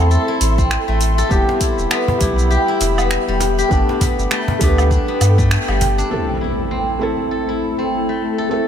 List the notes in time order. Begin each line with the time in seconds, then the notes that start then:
Already playing: E2 A3 C4 E4 A4 E5 C6
0.11 A4, shaker
0.28 E4
0.41 A1, open hi-hat, shaker
0.58 C4, kick, shaker
0.71 finger snap, shaker
0.88 A1 A3
1.01 open hi-hat, shaker
1.18 A4, shaker
1.29 E1 G3 B3 E4 G4 B5, kick, shaker
1.49 cajon slap
1.61 E4, kick, open hi-hat, shaker
1.78 E1, shaker
1.91 B3, finger snap, shaker
2.08 cajon bass
2.19 B1 G3 B3 E4, kick, open hi-hat, shaker
2.23 G4
2.39 shaker
2.51 G4, shaker
2.68 E4
2.81 E1, cajon slap, open hi-hat, shaker
2.98 B3, low woodblock, shaker
3.11 finger snap, shaker
3.28 E1 G3
3.40 cajon slap, open hi-hat, shaker
3.59 G4, shaker
3.69 G1 A3 B3 D4 A4 G5, kick, shaker
3.73 G4
3.89 cajon slap
4.01 B3, kick, cajon bass, open hi-hat, shaker
4.19 G1, shaker
4.31 A3, finger snap, shaker
4.48 cajon bass
4.59 D2 A3 B3 D4, kick, cajon slap, open hi-hat, shaker
4.63 G4
4.78 cajon slap, low woodblock, shaker
4.91 D4, kick, shaker
5.08 B3
5.21 G2, open hi-hat, low woodblock, shaker
5.38 A3, kick, shaker
5.51 finger snap, shaker
5.68 G1 G3, low woodblock
5.81 cajon bass, open hi-hat, shaker
5.98 D4, shaker
6.09 A3 C4 E4 A4, impact
6.13 A4
6.41 E4
6.71 C4
6.99 A3 C4 E4 A4
7.31 A4
7.49 E4
7.79 C4
8.09 A3
8.38 A4
8.49 A3 C4 D4 E4 A4